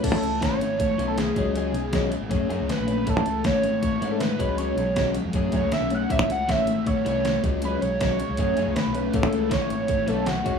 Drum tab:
CC |x-------|--------|--------|--------|
HH |xxxxxxxx|xxxxxxxx|xxxxxxxx|xxxxxxxx|
SD |--o---o-|--o---o-|--o---o-|--o--oo-|
BD |o-o-o--o|--o-o---|o-o-o--o|--o-oo--|

CC |--------|--------|--------|
HH |xxxxxxxx|xxxxxxxx|xxxxxxxx|
SD |--o--oo-|--o--oo-|--o--oo-|
BD |o-o-o--o|--o-o---|o-o-o--o|